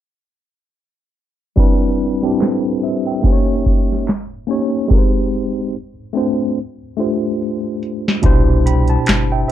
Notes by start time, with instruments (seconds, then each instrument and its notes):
1.56 tine electric piano G3 C4 D4 E4 B4, kick, closed hi-hat
2.01 closed hi-hat
2.21 tine electric piano G3 C4 D4, closed hi-hat
2.26 tine electric piano E4 G4
2.40 tine electric piano A4 C5, snare, clap, closed hi-hat
2.83 tine electric piano C5 E5, closed hi-hat
3.06 tine electric piano E5 G5, closed hi-hat
3.22 tine electric piano A#3 C#4 D#4 G4 C5, kick, closed hi-hat
3.33 tine electric piano C#5
3.66 kick, closed hi-hat
3.89 snare, closed hi-hat
4.08 snare, clap
4.47 tine electric piano A#3 C#4 D#4 G4 C#5, closed hi-hat
4.88 tine electric piano G#3 C4 D#4 G4 A#4, kick, closed hi-hat
4.98 tine electric piano C5
5.34 closed hi-hat
5.54 closed hi-hat
5.73 closed hi-hat
6.13 tine electric piano A3 C4 D4 F#4, closed hi-hat
6.17 tine electric piano C5
6.39 closed hi-hat
6.58 closed hi-hat
6.97 tine electric piano A3 D4 F4 G4 C5, closed hi-hat
7.22 closed hi-hat
7.42 closed hi-hat
7.83 closed hi-hat
8.08 snare
8.22 sub bass C2, tine electric piano B2 D4 E4 G4 C5, kick, closed hi-hat
8.66 tine electric piano G5 B5, closed hi-hat
8.88 tine electric piano A5, closed hi-hat
9.06 sub bass G1, snare, clap, closed hi-hat
9.32 tine electric piano E5 G5
9.48 tine electric piano E5